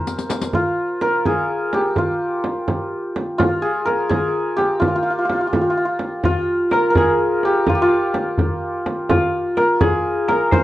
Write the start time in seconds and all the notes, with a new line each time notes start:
Already playing: F4 G#4 A#4 C5
0.07 riq, tombak tek
0.19 riq, tombak ka
0.30 riq, tombak tek, frame drum
0.42 riq, tombak ka
0.53 F4, frame drum
1.01 A#4, frame drum
1.25 G#4, frame drum
1.73 G4, frame drum
1.96 F4, frame drum
2.44 frame drum
2.68 frame drum
3.16 frame drum
3.38 F4, frame drum
3.62 G#4
3.85 A#4, frame drum
4.09 G#4, frame drum
4.56 G4, frame drum
4.80 F4, frame drum
4.88 F4
4.95 F4
5.03 F4
5.10 F4
5.18 F4
5.25 F4
5.29 F4, frame drum
5.41 F4
5.47 F4
5.53 F4, frame drum
5.61 F4
5.70 F4
5.77 F4
5.85 F4
5.99 frame drum
6.24 F4, frame drum, tombak dum
6.71 A#4, tombak tek, frame drum
6.90 A#4
6.95 G#4, tombak dum, frame drum
7.43 G4, tombak tek
7.66 F4, frame drum, tombak dum
7.75 G4
7.82 F4
8.14 tombak tek, frame drum
8.38 tombak dum, frame drum
8.86 tombak tek, frame drum
9.09 F4, frame drum, tombak dum
9.57 A#4, tombak tek, frame drum
9.81 G#4, frame drum, tombak dum
10.28 A#4, tombak tek, frame drum
10.51 C5, tombak dum, frame drum